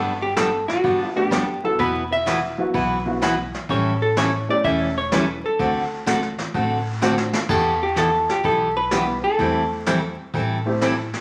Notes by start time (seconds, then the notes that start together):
Already playing: G1 G3 B3 D4 A4
0.22 G4
0.36 G3 B3 D4 A4, snare, hi-hat pedal
0.68 F#4, snare
0.83 G1 G3 B3 D4 A4, brush sweep, kick
1.16 A3 B3 D4 G4
1.31 F#1 G3 B3 D4 A4, snare, hi-hat pedal
1.64 F#3 B3 E4 A4
1.79 E1 E3 B3 E4 F#4 B4, brush sweep, kick
2.12 E5
2.26 E3 B3 E4 F#4 B4, snare, hi-hat pedal
2.58 F#3 B3 E4 F#4
2.74 B1 E3 B3 E4 F#4 B4, brush sweep, kick
3.06 F#3 B3 E4 F#4
3.22 E3 B3 E4 F#4 B4, snare, hi-hat pedal
3.54 snare
3.69 A1 E3 G3 C#4 E4 A4 C#5, brush sweep, kick
4.02 A4
4.17 E3 G3 C#4 E4 A4 C#5, snare, hi-hat pedal
4.49 A3 C#4 E4 G4 D5
4.64 E1 E3 G3 C#4 E4 A4 E5, brush sweep, kick
4.98 C#5
5.12 E3 G3 C#4 E4 A4 B4, snare, hi-hat pedal
5.46 A4
5.59 D2 D3 A3 C4 F#4 A4, brush sweep, kick
6.06 D3 A3 C4 F#4 A4, snare, hi-hat pedal
6.23 snare
6.38 snare
6.54 A1 D3 A3 C4 F#4 A4, brush sweep, kick
7.01 D3 A3 C4 D4 F#4 A4, snare, hi-hat pedal
7.17 snare
7.33 snare
7.49 E2 E3 B3 E4 G4 A4, brush sweep, kick, crash
7.83 G4
7.96 E3 B3 E4 G4 A4, snare, hi-hat pedal
8.29 G4, snare
8.43 B1 E3 B3 E4 G4 A4, brush sweep, kick
8.77 B4
8.91 E3 G3 B3 E4 G4, snare, hi-hat pedal
9.24 A4
9.38 E2 E3 G3 A3 C4 E4 G4 A4, brush sweep, kick
9.86 E3 G3 C4 E4 A4, snare, hi-hat pedal
10.34 A2 E3 G3 C4 E4 A4, brush sweep, kick
10.65 A3 C4 E4 G4
10.81 E3 G3 C4 E4 A4, snare, hi-hat pedal
11.13 snare